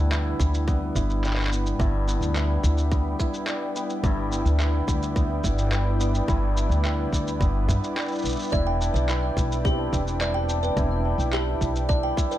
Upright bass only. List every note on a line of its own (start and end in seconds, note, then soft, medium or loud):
0.00 0.33 D2 medium
0.40 0.89 D2 medium
0.95 1.73 G1 medium
1.79 2.15 G1 medium
2.21 2.57 D2 medium
2.63 3.13 D2 medium
4.03 4.39 G1 medium
4.45 4.81 D2 medium
4.88 5.38 D2 medium
5.44 6.22 G1 medium
6.28 6.64 G1 medium
6.69 7.05 D2 medium
7.12 7.42 D2 medium
7.40 7.70 G1 medium
7.69 7.78 G2 medium
8.24 8.34 B1 medium
8.53 8.88 E1 medium
8.94 9.30 B1 medium
9.37 9.86 B1 medium
9.93 10.70 E1 medium
10.77 11.12 E1 medium
11.18 11.54 B1 medium
11.61 12.11 B1 medium